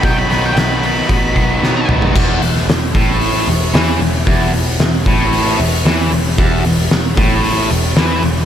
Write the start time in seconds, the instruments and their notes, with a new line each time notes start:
0.03 picked electric bass B1, distorted electric guitar B2 D#3 F#3 B3 D#4, lead electric guitar G5, kick, open hi-hat
0.19 lead electric guitar B5
0.30 picked electric bass B1, distorted electric guitar B2 D#3 F#3 B3 D#4, lead electric guitar B5, snare, open hi-hat
0.46 lead electric guitar G5
0.55 picked electric bass B1, distorted electric guitar B2 D#3 F#3 B3 D#4, lead electric guitar B5, snare, open hi-hat
0.81 distorted electric guitar B2 D#3 F#3 B3 D#4, open hi-hat
0.86 lead electric guitar B5
1.08 picked electric bass A1, distorted electric guitar B2 D#3 F#3 B3 D#4, kick, open hi-hat
1.34 picked electric bass B1, distorted electric guitar B2 D#3 F#3 B3 D#4, kick, open hi-hat
1.62 distorted electric guitar B2 D#3 F#3 B3 D#4, picked electric bass B2, snare
1.89 picked electric bass B1, distorted electric guitar B2 D#3 F#3 B3 D#4, mid tom
2.02 floor tom
2.15 picked electric bass E1, distorted electric guitar E2, kick, crash
2.41 picked electric bass E1, distorted electric guitar E2, open hi-hat
2.57 snare
2.68 picked electric bass E1, distorted electric guitar E2, snare, open hi-hat
2.95 picked electric bass A1, distorted electric guitar A2, kick, open hi-hat
3.21 open hi-hat
3.48 picked electric bass E1, distorted electric guitar E2, open hi-hat
3.74 picked electric bass E2, distorted electric guitar E3, snare, open hi-hat
4.00 picked electric bass E1, distorted electric guitar E2, open hi-hat
4.27 picked electric bass E1, distorted electric guitar E2, kick, open hi-hat
4.53 picked electric bass E1, distorted electric guitar E2, open hi-hat
4.79 picked electric bass E1, distorted electric guitar E2, snare, open hi-hat
5.06 picked electric bass A1, distorted electric guitar A2, kick, open hi-hat
5.33 open hi-hat
5.59 picked electric bass E1, distorted electric guitar E2, open hi-hat
5.85 picked electric bass E2, distorted electric guitar E3, snare, open hi-hat
6.12 picked electric bass E1, distorted electric guitar E2, open hi-hat
6.38 picked electric bass E1, distorted electric guitar E2, kick, open hi-hat
6.65 picked electric bass E1, distorted electric guitar E2, open hi-hat
6.91 picked electric bass E1, distorted electric guitar E2, snare, open hi-hat
7.17 picked electric bass A1, distorted electric guitar A2, kick, open hi-hat
7.44 open hi-hat
7.70 picked electric bass E1, distorted electric guitar E2, open hi-hat
7.96 picked electric bass E2, distorted electric guitar E3, snare, open hi-hat
8.23 picked electric bass E1, distorted electric guitar E2, open hi-hat